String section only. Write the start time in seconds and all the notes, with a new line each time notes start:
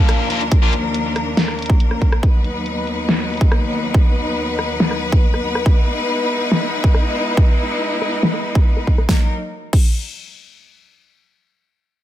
Already playing: D#2 F3 A#3 D4 A#4
2.23 D#2 F#3 B3 D#4 B4
5.66 G#3 D#4 E4
9.09 F#3 A#3 D#4 A#4